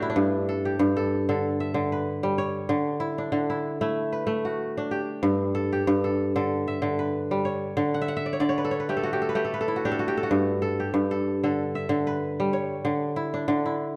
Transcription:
kora
Already playing: D3 A3 F#4 G4 A4 B4
0.02 E4
0.10 D4
0.16 G2
0.49 A4
0.65 G4
0.79 G2
0.97 A4
1.29 D3 A4
1.60 E5
1.74 D3
1.92 B4
2.23 G3
2.38 C#5
2.69 D3
3.00 E4
3.18 D4
3.32 D3
3.50 E4
3.81 A3 E4
4.12 B4
4.27 A3
4.45 F#4
4.77 D4
4.91 G4
5.23 G2
5.55 A4
5.72 G4
5.87 G2
6.04 A4
6.36 D3 A4
6.68 E5
6.82 D3
6.99 B4
7.31 G3
7.45 C#5
7.77 D3
7.94 F#5
8.01 E5
8.08 F#5
8.17 E5
8.26 D5
8.33 C#5
8.40 D3 D5
8.49 C#5
8.58 B4
8.64 A4
8.71 C#5
8.80 B4
8.89 A3 G4
8.97 A4
9.03 F#4
9.13 G4
9.22 A4
9.29 B4
9.35 A3 G4
9.45 A4
9.54 B4
9.61 A4
9.68 E4
9.76 F#4
9.85 D4 G4
9.92 A4
9.99 F#4
10.08 G4
10.17 A4
10.23 F#4
10.31 G2
10.62 A4
10.80 G4
10.94 G2
11.11 A4
11.44 D3 A4
11.75 E5
11.89 D3
12.07 B4
12.40 G3
12.53 C#5
12.85 D3
13.16 E4
13.34 D4
13.48 D3
13.66 E4

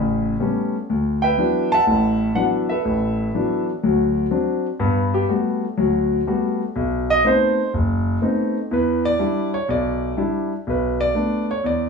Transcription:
grand piano
Already playing: A1 C#3
0.40 G3 A3 B3 C#4
0.90 D2
1.22 B4 E5 G5
1.38 E3 F#3 B3 D4
1.72 E5 F#5 A5
1.87 A1 A2
2.35 E3 F#3 B3 D4 F#5
2.69 A4 B4 E5
2.85 A1
3.34 E3 F#3 B3 D4
3.83 D2 F#3
4.31 F#3 C4 D4
4.80 G2 B3
5.14 G4
5.29 G3 A3 B3 F#4
5.77 D2 F#3
6.27 G3 A3 B3 F#4
6.76 B1
7.10 D#5
7.25 A3 B3 C4 D#4 C5
7.74 F#1
8.22 A3 B3 C4 D#4
8.71 E2 E3 B4
9.05 D5
9.19 G3 D4 E4
9.54 C#5
9.69 B1 D5
10.17 G3 D4 E4
10.67 B1 B4
11.01 D5
11.15 A3 B3 D4
11.51 C#5
11.64 E2 D5

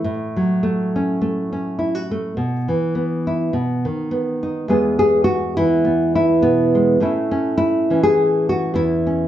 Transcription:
nylon-string guitar
0.04 A2
0.36 F#3
0.63 A3
0.96 C#4
1.22 A3
1.52 C#4
1.79 E4
1.95 F#4
2.11 A3
2.37 B2
2.68 E3
2.95 B3
3.27 E4
3.53 B2
3.85 D#3
4.11 B3
4.43 D#4
4.68 E2 G#3 B3 G#4
4.99 G#4
5.24 F#4
5.57 E3 E4
5.85 B3
6.15 E4
6.42 B2 B3
6.75 G#3
7.00 A2 A3 C#4 E4
7.31 C#4
7.58 E4
7.90 E3 C#4
8.03 G#4
8.49 F#4
8.74 E2 E4
9.07 C#4

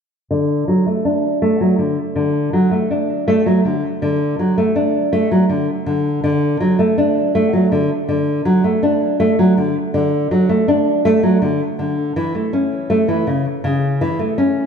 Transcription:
nylon-string guitar
0.31 D3
0.68 F#3
0.86 A3
1.05 D4
1.42 A3
1.61 F#3
1.79 D3
2.16 D3
2.53 F#3
2.71 A3
2.91 D4
3.28 A3
3.46 F#3
3.65 D3
4.02 D3
4.39 F#3
4.58 A3
4.76 D4
5.13 A3
5.31 F#3
5.49 D3
5.86 D3
6.24 D3
6.60 F#3
6.79 A3
6.98 D4
7.35 A3
7.53 F#3
7.72 D3
8.09 D3
8.45 F#3
8.64 A3
8.83 D4
9.20 A3
9.39 F#3
9.57 D3
9.94 D3
10.31 F#3
10.49 A3
10.68 D4
11.05 A3
11.23 F#3
11.42 D3
11.79 D3
12.16 E3
12.35 A3
12.53 C#4
12.90 A3
13.08 E3
13.27 C#3
13.64 C#3
14.01 E3
14.19 A3
14.38 C#4

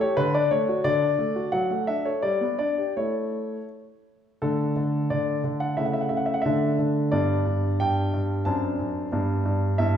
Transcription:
grand piano
0.01 G4 C#5
0.17 D3 B4
0.34 D4 D5
0.51 A3 C#5
0.69 F#4
0.84 D3 D5
1.02 D4
1.19 A3
1.36 F#4
1.52 F#3 F#5
1.71 A3
1.87 D4 E5
2.05 A4 C#5
2.22 G3 D5
2.41 B3
2.59 D4 D5
2.78 G4
2.97 A3 E4 C#5
4.42 D3 A3 D4 A4
4.76 D3
5.10 D3 D5
5.44 D3
5.60 F#5
5.77 C#3 A3 E4 E5
5.86 F#5
5.93 E5
6.01 F#5
6.09 C#3 E5
6.17 F#5
6.26 E5
6.34 F#5
6.42 D3 E5
6.46 A3 D4
6.79 D3
7.12 G2 B3 D4 D5
7.46 G2
7.80 G2 G5
8.13 G2
8.45 F#2 C4 D4 A5
8.79 F#2
9.12 G2 B3 D4
9.45 G2
9.78 G2 B3 E4 E5

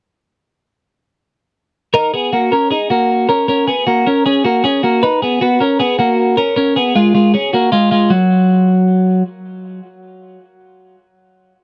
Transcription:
clean electric guitar
1.94 D#4 A#4
2.14 B3 G#4
2.33 A#3 F#4
2.52 C#4 A#4
2.71 D#4 G#4
2.90 A#3 F#4
3.29 C#4 A#4
3.48 C#4 A#4
3.67 B3 G#4
3.87 A#3 F#4
4.07 C#4 A#4
4.26 C#4 G#4
4.45 A#3 F#4
4.64 C#4 G#4
4.83 A#3 F#4
5.03 D#4 B4
5.22 B3 G#4
5.41 B3 F#4
5.60 C#4 A#4
5.80 B3 G#4
5.99 A#3 F#4
6.37 C#4 A#4
6.56 C#4 A#4
6.76 B3 G#4
6.96 G#3 F4
7.15 G#3 F4
7.34 C#4 G#4
7.53 A#3 F#4
7.72 G#3 F4
7.91 G#3 F4
8.10 F#3

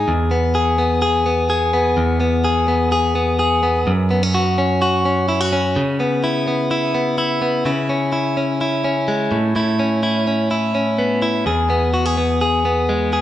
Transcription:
clean electric guitar
Already playing: D#4 G#4
0.08 E2
0.31 B3
0.55 G#4
0.78 B3
1.02 G#4
1.26 B3
1.50 G#4
1.73 B3
1.97 E2
2.20 B3
2.44 G#4
2.68 B3
2.92 G#4
3.15 B3
3.39 G#4
3.63 B3
3.87 F#2
4.11 B3
4.23 C#4
4.34 F#4
4.58 C#4
4.82 F#4
5.05 C#4
5.29 E4
5.41 F#4
5.53 C#4
5.76 C#3
6.00 B3
6.24 E4
6.47 B3
6.71 E4
6.95 B3
7.18 E4
7.42 B3
7.65 C#3 E4
7.89 C#4
8.13 E4
8.37 C#4
8.61 E4
8.84 C#4
9.08 G#3
9.32 A2
9.56 A2 E4
9.79 C#4
10.03 E4
10.27 C#4
10.51 E4
10.75 C#4
10.98 B3
11.22 E4
11.46 E2 G#4
11.70 B3
11.94 F#4
12.06 G#4
12.17 B3
12.41 G#4
12.65 B3
12.89 G#3
13.13 G#4

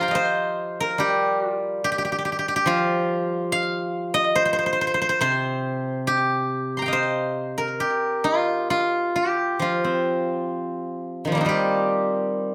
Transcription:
guzheng
Already playing: F3 G3 F4 G4 C6
0.01 G5 A#5
0.08 D#5 F5
0.15 C5
0.80 A#4
0.98 G3 G4
1.52 F4
1.84 G4
1.92 G4
1.98 G4
2.05 G4
2.12 G4
2.18 G4
2.25 G4
2.32 G4
2.39 G4
2.48 G4
2.56 G4
2.66 F3 F4
3.52 F5
4.14 D#5
4.35 C5
4.45 C5
4.53 C5
4.59 C5
4.66 C5
4.73 C5
4.81 C5
4.87 C5
4.94 C5
5.02 C5
5.09 C5
5.21 C3 C5
6.07 G4
6.77 A#5 C6
6.82 F5 G5
6.88 D#5
6.93 C5
7.58 A#4
7.80 G4
8.24 F4
8.70 F4
9.16 G4
9.59 F3 F4
9.84 C4
11.25 D#3 F3
11.32 G3 A#3
11.37 C4 D#4
11.45 G3 F4 G4

